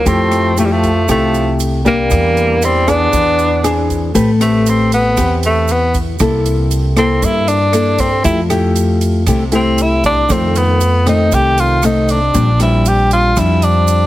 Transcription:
0.05 upright bass F2, nylon-string guitar F3 A3 E4 G4, trombone A3, tenor saxophone C4, kick, closed hi-hat, shaker
0.31 cross-stick, closed hi-hat, shaker
0.57 trombone F3, nylon-string guitar A3 E4 G4, tenor saxophone A3, closed hi-hat, shaker
0.63 trombone E3, tenor saxophone G3
0.71 trombone F3, tenor saxophone A3
0.83 kick, closed hi-hat, shaker
1.08 upright bass C2, nylon-string guitar C3 A3 E4 G4, trombone F3, tenor saxophone A3, kick, cross-stick, closed hi-hat, shaker
1.34 closed hi-hat, shaker
1.60 closed hi-hat, shaker
1.85 trombone G3, nylon-string guitar A#3 D4 G4, tenor saxophone A#3, kick, closed hi-hat, shaker
2.09 upright bass E2, nylon-string guitar E3, kick, cross-stick, closed hi-hat, shaker
2.37 closed hi-hat, shaker
2.61 trombone G3, tenor saxophone C4, closed hi-hat, shaker
2.88 trombone B3, nylon-string guitar D4 G#4, tenor saxophone D4, kick, cross-stick, closed hi-hat, shaker
3.12 upright bass E2, nylon-string guitar E3, kick, closed hi-hat, shaker
3.39 closed hi-hat, shaker
3.63 nylon-string guitar C4 D4 G#4, cross-stick, closed hi-hat, shaker
3.90 kick, closed hi-hat, shaker
4.14 upright bass A1, nylon-string guitar A3 C4 G4 B4, kick, closed hi-hat, shaker
4.40 tenor saxophone A3, nylon-string guitar C4 G4 B4, cross-stick, closed hi-hat, shaker
4.66 tenor saxophone C4, closed hi-hat, shaker
4.92 tenor saxophone B3, closed hi-hat, shaker
5.17 upright bass E2, nylon-string guitar E3 C4 G4 B4, kick, cross-stick, closed hi-hat, shaker
5.43 tenor saxophone A3, closed hi-hat, shaker
5.68 tenor saxophone B3, closed hi-hat, shaker
5.94 kick, closed hi-hat, shaker
6.19 upright bass C2, nylon-string guitar C3 A#3 E4 A4, kick, cross-stick, closed hi-hat, shaker
6.46 closed hi-hat, shaker
6.71 closed hi-hat, shaker
6.96 nylon-string guitar A#3 E4 A4, tenor saxophone C4, cross-stick, closed hi-hat, shaker
7.21 nylon-string guitar G2, upright bass G2, tenor saxophone E4, kick, closed hi-hat, shaker
7.48 tenor saxophone D4, closed hi-hat, shaker
7.72 nylon-string guitar A#3 E4 A4, cross-stick, closed hi-hat, shaker
7.98 tenor saxophone C4, kick, closed hi-hat, shaker
8.24 upright bass F2, nylon-string guitar F3 A3 E4 G4, tenor saxophone E4, kick, closed hi-hat, shaker
8.49 nylon-string guitar A3 E4 G4, cross-stick, closed hi-hat, shaker
8.76 closed hi-hat, shaker
9.01 closed hi-hat, shaker
9.27 upright bass C2, nylon-string guitar C3 A3 E4 G4, kick, cross-stick, closed hi-hat, shaker
9.52 nylon-string guitar A3 E4 G4, tenor saxophone C4, closed hi-hat, shaker
9.78 tenor saxophone E4, closed hi-hat, shaker
10.04 tenor saxophone D4, kick, closed hi-hat, shaker
10.29 nylon-string guitar F2 D#3 A3 C4, upright bass F2, tenor saxophone C4, kick, cross-stick, closed hi-hat, shaker
10.55 tenor saxophone B3, closed hi-hat, shaker
10.81 closed hi-hat, shaker
11.06 nylon-string guitar D#3 A3 C4, tenor saxophone D#4, cross-stick, closed hi-hat, shaker
11.31 upright bass C2, nylon-string guitar C3, tenor saxophone G4, kick, closed hi-hat, shaker
11.57 tenor saxophone F4, closed hi-hat, shaker
11.82 nylon-string guitar D#3 A3 C4, tenor saxophone D#4, cross-stick, closed hi-hat, shaker
12.08 tenor saxophone D4, closed hi-hat, shaker
12.34 upright bass A#1, nylon-string guitar A#2 G3 C4 D4, kick, closed hi-hat, shaker
12.60 nylon-string guitar G3 C4 D4, tenor saxophone E4, cross-stick, closed hi-hat, shaker
12.86 tenor saxophone G4, closed hi-hat, shaker
13.11 tenor saxophone F4, closed hi-hat, shaker
13.36 upright bass F2, nylon-string guitar F3 G3 C4 D4, tenor saxophone E4, kick, cross-stick, closed hi-hat, shaker
13.62 tenor saxophone D4, closed hi-hat, shaker
13.88 closed hi-hat, shaker

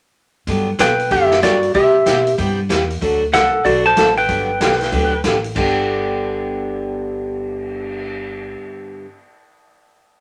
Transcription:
0.47 upright bass G2, steel-string acoustic guitar D3 F#3 B3 D4 G4, kick, open hi-hat
0.79 upright bass B2, steel-string acoustic guitar D3 F#3 B3 D4 G4, electric slide guitar B4 G5, snare, closed hi-hat
0.99 open hi-hat
1.10 upright bass F#2, steel-string acoustic guitar D3 F#3 B3 D4 G4, electric slide guitar G4 E5, kick, open hi-hat
1.31 snare
1.42 upright bass G2, steel-string acoustic guitar D3 F#3 B3 D4 G4, electric slide guitar F#4 D5, snare, closed hi-hat
1.63 open hi-hat
1.74 steel-string acoustic guitar C3 G3 B3 E4 G4, upright bass C3, electric slide guitar G4 E5, kick, open hi-hat
2.06 upright bass B2, steel-string acoustic guitar C3 G3 B3 E4 G4, snare, closed hi-hat
2.27 open hi-hat
2.38 upright bass G2, steel-string acoustic guitar C3 G3 B3 E4 G4, kick, open hi-hat
2.69 upright bass E2, steel-string acoustic guitar C3 G3 B3 E4 G4, snare, closed hi-hat
2.90 open hi-hat
3.01 upright bass D2, steel-string acoustic guitar D3 F#3 A3 D4 F#4, kick, open hi-hat
3.33 upright bass C2, steel-string acoustic guitar D3 F#3 A3 D4 F#4, electric slide guitar A4 F#5, snare, closed hi-hat
3.64 upright bass B1, steel-string acoustic guitar D3 F#3 A3 D4 F#4, electric slide guitar F#4 D5, kick, open hi-hat
3.86 electric slide guitar C5 A5
3.96 upright bass A1, steel-string acoustic guitar D3 F#3 A3 D4 F#4, snare, closed hi-hat
4.17 electric slide guitar B4 G5, open hi-hat
4.28 upright bass G1, steel-string acoustic guitar D3 F#3 B3 D4 G4, kick, open hi-hat
4.60 upright bass B1, steel-string acoustic guitar D3 F#3 B3 D4 G4, snare, closed hi-hat
4.71 snare
4.81 snare, open hi-hat
4.92 upright bass D2, steel-string acoustic guitar D3 F#3 B3 D4 G4, kick, open hi-hat
5.24 upright bass A1, steel-string acoustic guitar D3 F#3 B3 D4 G4, snare, closed hi-hat
5.44 open hi-hat
5.55 upright bass G1, steel-string acoustic guitar G2 D3 B3 D4 G4, kick, crash
5.76 cymbal swell

